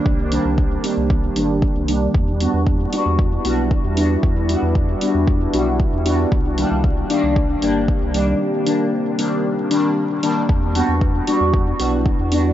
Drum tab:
HH |-o-o-o-o|-o-o-o-o|-o-o-o-o|-o-o-o-o|
BD |o-o-o-o-|o-o-o-o-|o-o-o-o-|o-o-o-o-|

HH |-o-o-o-o|-o-o-o-o|
BD |--------|o-o-o-o-|